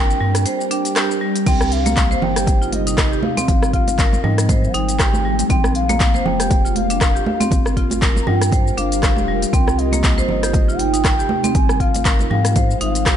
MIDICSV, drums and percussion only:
0, 0, Header, 1, 2, 480
1, 0, Start_track
1, 0, Key_signature, -3, "minor"
1, 0, Tempo, 504202
1, 1396, Time_signature, 4, 2, 24, 8
1, 12536, End_track
2, 0, Start_track
2, 0, Title_t, "Drums"
2, 99, Note_on_c, 9, 82, 38
2, 194, Note_off_c, 9, 82, 0
2, 331, Note_on_c, 9, 37, 84
2, 331, Note_on_c, 9, 42, 48
2, 339, Note_on_c, 9, 82, 76
2, 426, Note_off_c, 9, 37, 0
2, 426, Note_off_c, 9, 42, 0
2, 434, Note_off_c, 9, 82, 0
2, 434, Note_on_c, 9, 42, 59
2, 442, Note_on_c, 9, 82, 65
2, 530, Note_off_c, 9, 42, 0
2, 537, Note_off_c, 9, 82, 0
2, 579, Note_on_c, 9, 82, 39
2, 674, Note_off_c, 9, 82, 0
2, 676, Note_on_c, 9, 42, 55
2, 771, Note_off_c, 9, 42, 0
2, 810, Note_on_c, 9, 42, 45
2, 818, Note_on_c, 9, 82, 75
2, 905, Note_off_c, 9, 42, 0
2, 913, Note_off_c, 9, 82, 0
2, 914, Note_on_c, 9, 37, 94
2, 914, Note_on_c, 9, 39, 105
2, 914, Note_on_c, 9, 42, 62
2, 922, Note_on_c, 9, 82, 66
2, 1010, Note_off_c, 9, 37, 0
2, 1010, Note_off_c, 9, 39, 0
2, 1010, Note_off_c, 9, 42, 0
2, 1017, Note_off_c, 9, 82, 0
2, 1058, Note_on_c, 9, 82, 40
2, 1153, Note_off_c, 9, 82, 0
2, 1290, Note_on_c, 9, 42, 46
2, 1298, Note_on_c, 9, 82, 74
2, 1386, Note_off_c, 9, 42, 0
2, 1393, Note_off_c, 9, 82, 0
2, 1394, Note_on_c, 9, 42, 60
2, 1394, Note_on_c, 9, 49, 76
2, 1395, Note_on_c, 9, 36, 121
2, 1399, Note_on_c, 9, 64, 88
2, 1402, Note_on_c, 9, 82, 67
2, 1489, Note_off_c, 9, 42, 0
2, 1489, Note_off_c, 9, 49, 0
2, 1490, Note_off_c, 9, 36, 0
2, 1494, Note_off_c, 9, 64, 0
2, 1497, Note_off_c, 9, 82, 0
2, 1530, Note_on_c, 9, 37, 93
2, 1534, Note_on_c, 9, 62, 53
2, 1537, Note_on_c, 9, 82, 38
2, 1625, Note_off_c, 9, 37, 0
2, 1629, Note_off_c, 9, 62, 0
2, 1633, Note_off_c, 9, 82, 0
2, 1635, Note_on_c, 9, 42, 34
2, 1730, Note_off_c, 9, 42, 0
2, 1770, Note_on_c, 9, 42, 46
2, 1770, Note_on_c, 9, 62, 45
2, 1775, Note_on_c, 9, 63, 93
2, 1777, Note_on_c, 9, 82, 80
2, 1865, Note_off_c, 9, 42, 0
2, 1865, Note_off_c, 9, 62, 0
2, 1870, Note_off_c, 9, 63, 0
2, 1872, Note_off_c, 9, 82, 0
2, 1873, Note_on_c, 9, 39, 103
2, 1873, Note_on_c, 9, 42, 57
2, 1875, Note_on_c, 9, 36, 122
2, 1881, Note_on_c, 9, 82, 64
2, 1968, Note_off_c, 9, 39, 0
2, 1968, Note_off_c, 9, 42, 0
2, 1970, Note_off_c, 9, 36, 0
2, 1976, Note_off_c, 9, 82, 0
2, 2007, Note_on_c, 9, 62, 55
2, 2017, Note_on_c, 9, 82, 41
2, 2102, Note_off_c, 9, 62, 0
2, 2113, Note_off_c, 9, 82, 0
2, 2115, Note_on_c, 9, 64, 111
2, 2210, Note_off_c, 9, 64, 0
2, 2250, Note_on_c, 9, 37, 88
2, 2250, Note_on_c, 9, 42, 47
2, 2257, Note_on_c, 9, 82, 81
2, 2345, Note_off_c, 9, 37, 0
2, 2345, Note_off_c, 9, 42, 0
2, 2347, Note_on_c, 9, 63, 93
2, 2352, Note_off_c, 9, 82, 0
2, 2354, Note_on_c, 9, 36, 122
2, 2355, Note_on_c, 9, 42, 59
2, 2355, Note_on_c, 9, 62, 40
2, 2362, Note_on_c, 9, 82, 64
2, 2442, Note_off_c, 9, 63, 0
2, 2450, Note_off_c, 9, 36, 0
2, 2450, Note_off_c, 9, 42, 0
2, 2450, Note_off_c, 9, 62, 0
2, 2458, Note_off_c, 9, 82, 0
2, 2498, Note_on_c, 9, 82, 41
2, 2593, Note_off_c, 9, 82, 0
2, 2594, Note_on_c, 9, 42, 55
2, 2595, Note_on_c, 9, 63, 54
2, 2596, Note_on_c, 9, 62, 55
2, 2690, Note_off_c, 9, 42, 0
2, 2690, Note_off_c, 9, 63, 0
2, 2691, Note_off_c, 9, 62, 0
2, 2731, Note_on_c, 9, 42, 45
2, 2738, Note_on_c, 9, 82, 76
2, 2826, Note_off_c, 9, 42, 0
2, 2833, Note_off_c, 9, 82, 0
2, 2835, Note_on_c, 9, 36, 121
2, 2836, Note_on_c, 9, 37, 103
2, 2836, Note_on_c, 9, 39, 102
2, 2836, Note_on_c, 9, 42, 60
2, 2836, Note_on_c, 9, 62, 48
2, 2843, Note_on_c, 9, 82, 70
2, 2930, Note_off_c, 9, 36, 0
2, 2931, Note_off_c, 9, 37, 0
2, 2931, Note_off_c, 9, 39, 0
2, 2931, Note_off_c, 9, 42, 0
2, 2932, Note_off_c, 9, 62, 0
2, 2938, Note_off_c, 9, 82, 0
2, 2979, Note_on_c, 9, 82, 43
2, 3072, Note_on_c, 9, 63, 106
2, 3074, Note_off_c, 9, 82, 0
2, 3167, Note_off_c, 9, 63, 0
2, 3212, Note_on_c, 9, 42, 46
2, 3213, Note_on_c, 9, 63, 85
2, 3214, Note_on_c, 9, 62, 51
2, 3219, Note_on_c, 9, 82, 79
2, 3307, Note_off_c, 9, 42, 0
2, 3308, Note_off_c, 9, 63, 0
2, 3309, Note_off_c, 9, 62, 0
2, 3315, Note_off_c, 9, 82, 0
2, 3315, Note_on_c, 9, 36, 122
2, 3316, Note_on_c, 9, 42, 57
2, 3319, Note_on_c, 9, 64, 99
2, 3324, Note_on_c, 9, 82, 70
2, 3410, Note_off_c, 9, 36, 0
2, 3411, Note_off_c, 9, 42, 0
2, 3414, Note_off_c, 9, 64, 0
2, 3419, Note_off_c, 9, 82, 0
2, 3451, Note_on_c, 9, 37, 95
2, 3453, Note_on_c, 9, 62, 48
2, 3459, Note_on_c, 9, 82, 39
2, 3546, Note_off_c, 9, 37, 0
2, 3549, Note_off_c, 9, 62, 0
2, 3554, Note_off_c, 9, 82, 0
2, 3555, Note_on_c, 9, 36, 62
2, 3555, Note_on_c, 9, 42, 33
2, 3650, Note_off_c, 9, 36, 0
2, 3650, Note_off_c, 9, 42, 0
2, 3688, Note_on_c, 9, 63, 93
2, 3691, Note_on_c, 9, 42, 45
2, 3691, Note_on_c, 9, 62, 36
2, 3699, Note_on_c, 9, 82, 83
2, 3783, Note_off_c, 9, 63, 0
2, 3786, Note_off_c, 9, 62, 0
2, 3787, Note_off_c, 9, 42, 0
2, 3794, Note_off_c, 9, 82, 0
2, 3795, Note_on_c, 9, 36, 126
2, 3796, Note_on_c, 9, 39, 98
2, 3796, Note_on_c, 9, 42, 54
2, 3803, Note_on_c, 9, 82, 70
2, 3890, Note_off_c, 9, 36, 0
2, 3891, Note_off_c, 9, 39, 0
2, 3891, Note_off_c, 9, 42, 0
2, 3898, Note_off_c, 9, 82, 0
2, 3929, Note_on_c, 9, 63, 70
2, 3931, Note_on_c, 9, 62, 58
2, 3938, Note_on_c, 9, 82, 42
2, 4024, Note_off_c, 9, 63, 0
2, 4026, Note_off_c, 9, 62, 0
2, 4033, Note_off_c, 9, 82, 0
2, 4035, Note_on_c, 9, 64, 107
2, 4131, Note_off_c, 9, 64, 0
2, 4171, Note_on_c, 9, 37, 85
2, 4171, Note_on_c, 9, 42, 47
2, 4179, Note_on_c, 9, 82, 85
2, 4266, Note_off_c, 9, 37, 0
2, 4266, Note_off_c, 9, 42, 0
2, 4274, Note_off_c, 9, 82, 0
2, 4274, Note_on_c, 9, 62, 39
2, 4275, Note_on_c, 9, 36, 120
2, 4275, Note_on_c, 9, 42, 55
2, 4276, Note_on_c, 9, 63, 107
2, 4278, Note_on_c, 9, 64, 96
2, 4283, Note_on_c, 9, 82, 65
2, 4369, Note_off_c, 9, 62, 0
2, 4370, Note_off_c, 9, 36, 0
2, 4371, Note_off_c, 9, 42, 0
2, 4371, Note_off_c, 9, 63, 0
2, 4374, Note_off_c, 9, 64, 0
2, 4378, Note_off_c, 9, 82, 0
2, 4419, Note_on_c, 9, 82, 42
2, 4510, Note_on_c, 9, 62, 51
2, 4515, Note_off_c, 9, 82, 0
2, 4516, Note_on_c, 9, 42, 53
2, 4605, Note_off_c, 9, 62, 0
2, 4611, Note_off_c, 9, 42, 0
2, 4651, Note_on_c, 9, 42, 45
2, 4658, Note_on_c, 9, 82, 80
2, 4746, Note_off_c, 9, 42, 0
2, 4752, Note_on_c, 9, 62, 38
2, 4753, Note_off_c, 9, 82, 0
2, 4755, Note_on_c, 9, 36, 123
2, 4755, Note_on_c, 9, 37, 105
2, 4755, Note_on_c, 9, 39, 100
2, 4755, Note_on_c, 9, 42, 60
2, 4763, Note_on_c, 9, 82, 70
2, 4847, Note_off_c, 9, 62, 0
2, 4850, Note_off_c, 9, 36, 0
2, 4851, Note_off_c, 9, 37, 0
2, 4851, Note_off_c, 9, 39, 0
2, 4851, Note_off_c, 9, 42, 0
2, 4858, Note_off_c, 9, 82, 0
2, 4889, Note_on_c, 9, 63, 90
2, 4899, Note_on_c, 9, 82, 42
2, 4984, Note_off_c, 9, 63, 0
2, 4994, Note_off_c, 9, 82, 0
2, 5131, Note_on_c, 9, 42, 46
2, 5137, Note_on_c, 9, 62, 56
2, 5139, Note_on_c, 9, 82, 83
2, 5226, Note_off_c, 9, 42, 0
2, 5230, Note_on_c, 9, 64, 83
2, 5232, Note_off_c, 9, 62, 0
2, 5234, Note_off_c, 9, 82, 0
2, 5235, Note_on_c, 9, 36, 125
2, 5235, Note_on_c, 9, 42, 58
2, 5243, Note_on_c, 9, 82, 73
2, 5325, Note_off_c, 9, 64, 0
2, 5330, Note_off_c, 9, 36, 0
2, 5330, Note_off_c, 9, 42, 0
2, 5338, Note_off_c, 9, 82, 0
2, 5370, Note_on_c, 9, 37, 95
2, 5377, Note_on_c, 9, 62, 55
2, 5378, Note_on_c, 9, 82, 41
2, 5466, Note_off_c, 9, 37, 0
2, 5472, Note_off_c, 9, 62, 0
2, 5473, Note_off_c, 9, 82, 0
2, 5474, Note_on_c, 9, 42, 32
2, 5569, Note_off_c, 9, 42, 0
2, 5611, Note_on_c, 9, 42, 44
2, 5611, Note_on_c, 9, 62, 38
2, 5614, Note_on_c, 9, 63, 105
2, 5618, Note_on_c, 9, 82, 82
2, 5706, Note_off_c, 9, 42, 0
2, 5706, Note_off_c, 9, 62, 0
2, 5709, Note_off_c, 9, 63, 0
2, 5713, Note_off_c, 9, 82, 0
2, 5714, Note_on_c, 9, 39, 96
2, 5714, Note_on_c, 9, 42, 54
2, 5715, Note_on_c, 9, 36, 127
2, 5722, Note_on_c, 9, 82, 72
2, 5809, Note_off_c, 9, 39, 0
2, 5809, Note_off_c, 9, 42, 0
2, 5810, Note_off_c, 9, 36, 0
2, 5817, Note_off_c, 9, 82, 0
2, 5845, Note_on_c, 9, 62, 58
2, 5859, Note_on_c, 9, 82, 42
2, 5940, Note_off_c, 9, 62, 0
2, 5954, Note_off_c, 9, 82, 0
2, 5956, Note_on_c, 9, 64, 106
2, 6051, Note_off_c, 9, 64, 0
2, 6091, Note_on_c, 9, 37, 83
2, 6091, Note_on_c, 9, 42, 45
2, 6098, Note_on_c, 9, 82, 89
2, 6186, Note_off_c, 9, 37, 0
2, 6186, Note_off_c, 9, 42, 0
2, 6191, Note_on_c, 9, 63, 106
2, 6194, Note_off_c, 9, 82, 0
2, 6194, Note_on_c, 9, 42, 53
2, 6194, Note_on_c, 9, 62, 35
2, 6195, Note_on_c, 9, 36, 127
2, 6202, Note_on_c, 9, 82, 69
2, 6286, Note_off_c, 9, 63, 0
2, 6289, Note_off_c, 9, 42, 0
2, 6289, Note_off_c, 9, 62, 0
2, 6290, Note_off_c, 9, 36, 0
2, 6297, Note_off_c, 9, 82, 0
2, 6338, Note_on_c, 9, 82, 41
2, 6432, Note_on_c, 9, 62, 53
2, 6433, Note_off_c, 9, 82, 0
2, 6434, Note_on_c, 9, 42, 50
2, 6444, Note_on_c, 9, 63, 62
2, 6527, Note_off_c, 9, 62, 0
2, 6529, Note_off_c, 9, 42, 0
2, 6539, Note_off_c, 9, 63, 0
2, 6570, Note_on_c, 9, 42, 44
2, 6577, Note_on_c, 9, 82, 82
2, 6665, Note_off_c, 9, 42, 0
2, 6672, Note_off_c, 9, 82, 0
2, 6674, Note_on_c, 9, 37, 99
2, 6674, Note_on_c, 9, 39, 97
2, 6674, Note_on_c, 9, 42, 59
2, 6674, Note_on_c, 9, 62, 37
2, 6675, Note_on_c, 9, 36, 127
2, 6682, Note_on_c, 9, 82, 70
2, 6769, Note_off_c, 9, 62, 0
2, 6770, Note_off_c, 9, 36, 0
2, 6770, Note_off_c, 9, 37, 0
2, 6770, Note_off_c, 9, 39, 0
2, 6770, Note_off_c, 9, 42, 0
2, 6777, Note_off_c, 9, 82, 0
2, 6818, Note_on_c, 9, 82, 43
2, 6913, Note_off_c, 9, 82, 0
2, 6915, Note_on_c, 9, 63, 110
2, 7010, Note_off_c, 9, 63, 0
2, 7047, Note_on_c, 9, 62, 54
2, 7050, Note_on_c, 9, 63, 103
2, 7051, Note_on_c, 9, 42, 43
2, 7059, Note_on_c, 9, 82, 86
2, 7142, Note_off_c, 9, 62, 0
2, 7145, Note_off_c, 9, 63, 0
2, 7146, Note_off_c, 9, 42, 0
2, 7147, Note_on_c, 9, 64, 93
2, 7154, Note_off_c, 9, 82, 0
2, 7154, Note_on_c, 9, 36, 127
2, 7155, Note_on_c, 9, 42, 57
2, 7163, Note_on_c, 9, 82, 69
2, 7242, Note_off_c, 9, 64, 0
2, 7250, Note_off_c, 9, 36, 0
2, 7250, Note_off_c, 9, 42, 0
2, 7258, Note_off_c, 9, 82, 0
2, 7287, Note_on_c, 9, 62, 52
2, 7291, Note_on_c, 9, 37, 90
2, 7299, Note_on_c, 9, 82, 42
2, 7382, Note_off_c, 9, 62, 0
2, 7386, Note_off_c, 9, 37, 0
2, 7394, Note_off_c, 9, 82, 0
2, 7395, Note_on_c, 9, 36, 63
2, 7396, Note_on_c, 9, 42, 31
2, 7490, Note_off_c, 9, 36, 0
2, 7491, Note_off_c, 9, 42, 0
2, 7521, Note_on_c, 9, 62, 37
2, 7528, Note_on_c, 9, 63, 99
2, 7532, Note_on_c, 9, 42, 41
2, 7539, Note_on_c, 9, 82, 81
2, 7616, Note_off_c, 9, 62, 0
2, 7623, Note_off_c, 9, 63, 0
2, 7627, Note_off_c, 9, 42, 0
2, 7635, Note_off_c, 9, 82, 0
2, 7635, Note_on_c, 9, 36, 127
2, 7636, Note_on_c, 9, 39, 98
2, 7636, Note_on_c, 9, 42, 52
2, 7644, Note_on_c, 9, 82, 68
2, 7730, Note_off_c, 9, 36, 0
2, 7731, Note_off_c, 9, 39, 0
2, 7731, Note_off_c, 9, 42, 0
2, 7739, Note_off_c, 9, 82, 0
2, 7770, Note_on_c, 9, 62, 48
2, 7770, Note_on_c, 9, 63, 71
2, 7779, Note_on_c, 9, 82, 42
2, 7865, Note_off_c, 9, 62, 0
2, 7865, Note_off_c, 9, 63, 0
2, 7872, Note_on_c, 9, 64, 106
2, 7875, Note_off_c, 9, 82, 0
2, 7967, Note_off_c, 9, 64, 0
2, 8011, Note_on_c, 9, 37, 82
2, 8011, Note_on_c, 9, 42, 46
2, 8019, Note_on_c, 9, 82, 84
2, 8106, Note_off_c, 9, 37, 0
2, 8106, Note_off_c, 9, 42, 0
2, 8107, Note_on_c, 9, 64, 83
2, 8113, Note_on_c, 9, 63, 103
2, 8114, Note_off_c, 9, 82, 0
2, 8115, Note_on_c, 9, 36, 127
2, 8115, Note_on_c, 9, 42, 53
2, 8116, Note_on_c, 9, 62, 39
2, 8123, Note_on_c, 9, 82, 71
2, 8202, Note_off_c, 9, 64, 0
2, 8208, Note_off_c, 9, 63, 0
2, 8210, Note_off_c, 9, 36, 0
2, 8210, Note_off_c, 9, 42, 0
2, 8211, Note_off_c, 9, 62, 0
2, 8218, Note_off_c, 9, 82, 0
2, 8258, Note_on_c, 9, 82, 41
2, 8351, Note_on_c, 9, 62, 53
2, 8354, Note_off_c, 9, 82, 0
2, 8356, Note_on_c, 9, 42, 49
2, 8447, Note_off_c, 9, 62, 0
2, 8451, Note_off_c, 9, 42, 0
2, 8492, Note_on_c, 9, 42, 42
2, 8500, Note_on_c, 9, 82, 81
2, 8587, Note_off_c, 9, 42, 0
2, 8587, Note_on_c, 9, 62, 42
2, 8595, Note_off_c, 9, 82, 0
2, 8595, Note_on_c, 9, 36, 124
2, 8596, Note_on_c, 9, 37, 94
2, 8596, Note_on_c, 9, 39, 102
2, 8596, Note_on_c, 9, 42, 53
2, 8604, Note_on_c, 9, 82, 71
2, 8683, Note_off_c, 9, 62, 0
2, 8690, Note_off_c, 9, 36, 0
2, 8691, Note_off_c, 9, 37, 0
2, 8691, Note_off_c, 9, 39, 0
2, 8691, Note_off_c, 9, 42, 0
2, 8699, Note_off_c, 9, 82, 0
2, 8726, Note_on_c, 9, 63, 96
2, 8740, Note_on_c, 9, 82, 43
2, 8821, Note_off_c, 9, 63, 0
2, 8835, Note_off_c, 9, 82, 0
2, 8969, Note_on_c, 9, 62, 49
2, 8972, Note_on_c, 9, 42, 43
2, 8980, Note_on_c, 9, 82, 81
2, 9064, Note_off_c, 9, 62, 0
2, 9067, Note_off_c, 9, 42, 0
2, 9072, Note_on_c, 9, 64, 78
2, 9075, Note_off_c, 9, 82, 0
2, 9075, Note_on_c, 9, 36, 121
2, 9078, Note_on_c, 9, 42, 55
2, 9085, Note_on_c, 9, 82, 67
2, 9167, Note_off_c, 9, 64, 0
2, 9170, Note_off_c, 9, 36, 0
2, 9173, Note_off_c, 9, 42, 0
2, 9180, Note_off_c, 9, 82, 0
2, 9208, Note_on_c, 9, 62, 54
2, 9212, Note_on_c, 9, 37, 90
2, 9220, Note_on_c, 9, 82, 39
2, 9303, Note_off_c, 9, 62, 0
2, 9307, Note_off_c, 9, 37, 0
2, 9315, Note_off_c, 9, 82, 0
2, 9317, Note_on_c, 9, 42, 30
2, 9412, Note_off_c, 9, 42, 0
2, 9446, Note_on_c, 9, 63, 98
2, 9452, Note_on_c, 9, 42, 42
2, 9454, Note_on_c, 9, 62, 35
2, 9459, Note_on_c, 9, 82, 79
2, 9542, Note_off_c, 9, 63, 0
2, 9547, Note_off_c, 9, 42, 0
2, 9549, Note_off_c, 9, 62, 0
2, 9555, Note_off_c, 9, 82, 0
2, 9556, Note_on_c, 9, 36, 117
2, 9556, Note_on_c, 9, 39, 97
2, 9556, Note_on_c, 9, 42, 54
2, 9563, Note_on_c, 9, 82, 66
2, 9651, Note_off_c, 9, 36, 0
2, 9651, Note_off_c, 9, 39, 0
2, 9651, Note_off_c, 9, 42, 0
2, 9659, Note_off_c, 9, 82, 0
2, 9690, Note_on_c, 9, 62, 57
2, 9698, Note_on_c, 9, 82, 40
2, 9786, Note_off_c, 9, 62, 0
2, 9792, Note_on_c, 9, 64, 89
2, 9793, Note_off_c, 9, 82, 0
2, 9887, Note_off_c, 9, 64, 0
2, 9930, Note_on_c, 9, 37, 82
2, 9930, Note_on_c, 9, 42, 43
2, 9938, Note_on_c, 9, 82, 79
2, 10026, Note_off_c, 9, 37, 0
2, 10026, Note_off_c, 9, 42, 0
2, 10028, Note_on_c, 9, 63, 104
2, 10033, Note_off_c, 9, 82, 0
2, 10033, Note_on_c, 9, 62, 38
2, 10034, Note_on_c, 9, 42, 50
2, 10036, Note_on_c, 9, 36, 125
2, 10042, Note_on_c, 9, 82, 68
2, 10123, Note_off_c, 9, 63, 0
2, 10128, Note_off_c, 9, 62, 0
2, 10130, Note_off_c, 9, 42, 0
2, 10131, Note_off_c, 9, 36, 0
2, 10137, Note_off_c, 9, 82, 0
2, 10179, Note_on_c, 9, 82, 40
2, 10271, Note_on_c, 9, 62, 50
2, 10274, Note_off_c, 9, 82, 0
2, 10276, Note_on_c, 9, 42, 52
2, 10278, Note_on_c, 9, 63, 61
2, 10367, Note_off_c, 9, 62, 0
2, 10371, Note_off_c, 9, 42, 0
2, 10373, Note_off_c, 9, 63, 0
2, 10412, Note_on_c, 9, 42, 41
2, 10419, Note_on_c, 9, 82, 79
2, 10507, Note_off_c, 9, 42, 0
2, 10514, Note_off_c, 9, 82, 0
2, 10514, Note_on_c, 9, 62, 39
2, 10515, Note_on_c, 9, 36, 123
2, 10516, Note_on_c, 9, 37, 92
2, 10516, Note_on_c, 9, 39, 106
2, 10516, Note_on_c, 9, 42, 57
2, 10524, Note_on_c, 9, 82, 68
2, 10609, Note_off_c, 9, 62, 0
2, 10610, Note_off_c, 9, 36, 0
2, 10611, Note_off_c, 9, 37, 0
2, 10611, Note_off_c, 9, 39, 0
2, 10611, Note_off_c, 9, 42, 0
2, 10619, Note_off_c, 9, 82, 0
2, 10658, Note_on_c, 9, 82, 43
2, 10749, Note_on_c, 9, 63, 115
2, 10753, Note_off_c, 9, 82, 0
2, 10844, Note_off_c, 9, 63, 0
2, 10886, Note_on_c, 9, 62, 47
2, 10891, Note_on_c, 9, 42, 42
2, 10894, Note_on_c, 9, 63, 95
2, 10898, Note_on_c, 9, 82, 81
2, 10981, Note_off_c, 9, 62, 0
2, 10986, Note_off_c, 9, 42, 0
2, 10989, Note_off_c, 9, 63, 0
2, 10993, Note_on_c, 9, 64, 79
2, 10994, Note_off_c, 9, 82, 0
2, 10995, Note_on_c, 9, 36, 119
2, 10995, Note_on_c, 9, 42, 56
2, 11002, Note_on_c, 9, 82, 66
2, 11089, Note_off_c, 9, 64, 0
2, 11090, Note_off_c, 9, 36, 0
2, 11090, Note_off_c, 9, 42, 0
2, 11097, Note_off_c, 9, 82, 0
2, 11131, Note_on_c, 9, 37, 86
2, 11135, Note_on_c, 9, 62, 57
2, 11139, Note_on_c, 9, 82, 37
2, 11226, Note_off_c, 9, 37, 0
2, 11230, Note_off_c, 9, 62, 0
2, 11234, Note_off_c, 9, 82, 0
2, 11235, Note_on_c, 9, 36, 58
2, 11236, Note_on_c, 9, 42, 31
2, 11330, Note_off_c, 9, 36, 0
2, 11331, Note_off_c, 9, 42, 0
2, 11370, Note_on_c, 9, 62, 39
2, 11371, Note_on_c, 9, 42, 45
2, 11378, Note_on_c, 9, 82, 78
2, 11382, Note_on_c, 9, 63, 81
2, 11465, Note_off_c, 9, 62, 0
2, 11466, Note_off_c, 9, 42, 0
2, 11474, Note_off_c, 9, 82, 0
2, 11474, Note_on_c, 9, 39, 108
2, 11474, Note_on_c, 9, 42, 56
2, 11475, Note_on_c, 9, 36, 120
2, 11477, Note_off_c, 9, 63, 0
2, 11482, Note_on_c, 9, 82, 66
2, 11569, Note_off_c, 9, 39, 0
2, 11569, Note_off_c, 9, 42, 0
2, 11570, Note_off_c, 9, 36, 0
2, 11577, Note_off_c, 9, 82, 0
2, 11606, Note_on_c, 9, 62, 52
2, 11607, Note_on_c, 9, 63, 70
2, 11618, Note_on_c, 9, 82, 39
2, 11701, Note_off_c, 9, 62, 0
2, 11703, Note_off_c, 9, 63, 0
2, 11713, Note_off_c, 9, 82, 0
2, 11717, Note_on_c, 9, 64, 93
2, 11813, Note_off_c, 9, 64, 0
2, 11850, Note_on_c, 9, 37, 76
2, 11850, Note_on_c, 9, 42, 45
2, 11857, Note_on_c, 9, 82, 80
2, 11945, Note_off_c, 9, 37, 0
2, 11945, Note_off_c, 9, 42, 0
2, 11952, Note_off_c, 9, 82, 0
2, 11954, Note_on_c, 9, 42, 55
2, 11955, Note_on_c, 9, 36, 112
2, 11958, Note_on_c, 9, 63, 104
2, 11959, Note_on_c, 9, 64, 89
2, 11961, Note_on_c, 9, 62, 40
2, 11962, Note_on_c, 9, 82, 63
2, 12049, Note_off_c, 9, 42, 0
2, 12050, Note_off_c, 9, 36, 0
2, 12053, Note_off_c, 9, 63, 0
2, 12055, Note_off_c, 9, 64, 0
2, 12056, Note_off_c, 9, 62, 0
2, 12057, Note_off_c, 9, 82, 0
2, 12098, Note_on_c, 9, 82, 39
2, 12193, Note_off_c, 9, 82, 0
2, 12193, Note_on_c, 9, 62, 46
2, 12194, Note_on_c, 9, 42, 53
2, 12288, Note_off_c, 9, 62, 0
2, 12289, Note_off_c, 9, 42, 0
2, 12330, Note_on_c, 9, 42, 43
2, 12338, Note_on_c, 9, 82, 73
2, 12425, Note_off_c, 9, 42, 0
2, 12433, Note_off_c, 9, 82, 0
2, 12435, Note_on_c, 9, 36, 116
2, 12435, Note_on_c, 9, 37, 94
2, 12435, Note_on_c, 9, 39, 113
2, 12435, Note_on_c, 9, 42, 58
2, 12437, Note_on_c, 9, 62, 42
2, 12442, Note_on_c, 9, 82, 67
2, 12530, Note_off_c, 9, 36, 0
2, 12530, Note_off_c, 9, 37, 0
2, 12530, Note_off_c, 9, 39, 0
2, 12530, Note_off_c, 9, 42, 0
2, 12533, Note_off_c, 9, 62, 0
2, 12536, Note_off_c, 9, 82, 0
2, 12536, End_track
0, 0, End_of_file